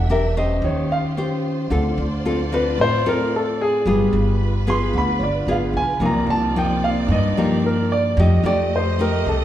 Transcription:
Already playing: E1 E3 D4 G4 E5
0.10 D4 G4 A#4 E5
0.37 C#4 G4 C5 D#5
0.62 D#2 D#3 F4 C5 C#5
0.92 F5
1.17 C#4 G4 C5
1.70 D2 D3 C4 F4 A4 D5
1.97 D2
2.25 C4 F4 A4
2.52 C4 F4 A4 B4
2.78 A1 A2 C5
3.06 C4 F4 A4 A#4
3.36 A4
3.61 G#4
3.85 G1 G3 B3 F4 G#4 B4
4.13 G1
4.67 B3 F4 G#4 C6
4.94 D2 D3
4.98 B5
5.19 G1 C#5
5.23 D5
5.46 G#1 B3 F4 G#4
5.51 F5
5.73 B1 G#5
6.00 C2 C3 F3 A#3 D#4
6.04 A#3 D5 A#5
6.27 C2 A5
6.56 F3 A#3 D#4 G5
6.84 F5
7.08 G2 D#5
7.37 F3 A#3 D#4 G4
7.66 A#4
7.92 D5
8.17 F2 F3 A3 D#4 G4 D#5
8.43 F2 A3 D#4 G4 D5
8.76 C5
8.99 A3 D#4 G4 A#4
9.26 C2 C3 A4

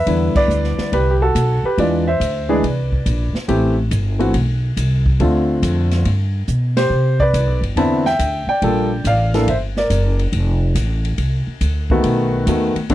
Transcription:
Already playing: B4 E5
0.06 E2 D3 G3 B3 E4, kick, ride
0.35 B4 D5, muted upright bass stroke, kick, crash
0.48 D2, hi-hat pedal
0.64 snare
0.78 muted upright bass stroke, snare
0.92 C2 G4 B4, kick, ride
1.11 G4
1.22 F#4 A4
1.35 B1, kick, hi-hat pedal, ride
1.63 G4 B4, muted upright bass stroke
1.78 E2 E3 G#3 D4 F4 B4 D5, kick, ride
2.08 C5 E5
2.20 D2, kick, hi-hat pedal, ride
2.49 E3 G#3 D4 G#4 B4 D5
2.63 C2, kick, ride
2.92 kick
3.06 A#1, kick, hi-hat pedal, ride
3.33 muted upright bass stroke, snare
3.48 A1 E3 A3 C4 G4, kick, ride
3.91 G1, kick, hi-hat pedal, ride
4.19 E3 A3 C4 F#4, ride
4.34 B1, kick, ride
4.77 C2, kick, hi-hat pedal, ride
5.06 kick
5.20 D2 D3 A3 C4 F4, ride
5.62 F2, kick, hi-hat pedal, ride
5.91 snare, ride
6.05 G2, kick, ride
6.48 B2, hi-hat pedal
6.77 G4 C5, snare, ride
6.90 C3
7.20 B4 D5, kick
7.34 C2, hi-hat pedal, ride
7.47 B1
7.61 G1, ride
7.76 E2 D3 B3 C4 E4 E5 A5, kick, ride
8.06 E5 G5, snare
8.19 D2, kick, hi-hat pedal, ride
8.47 D5 G5, muted upright bass stroke
8.62 A#1 G3 A#3 F4 A4, kick, ride
9.04 A1 D5 F5, kick, hi-hat pedal, ride
9.34 E3 A#3 D4 A4, snare, ride
9.47 G1 C5 E5, kick, ride
9.77 A#4 D5, snare
9.90 F#1, kick, hi-hat pedal, ride
10.19 ride
10.32 F1, kick, ride
10.75 A1, kick, hi-hat pedal, ride
11.05 ride
11.18 C2, kick, ride
11.47 muted upright bass stroke
11.61 D2, kick, hi-hat pedal, ride
11.90 D#3 A3 B3 F#4, kick
12.04 B1, kick, ride
12.47 D#2 D#3 A3 B3 F#4, kick, hi-hat pedal, ride
12.75 muted upright bass stroke, ride
12.89 D2 D3 A3 C4 D4, kick, ride

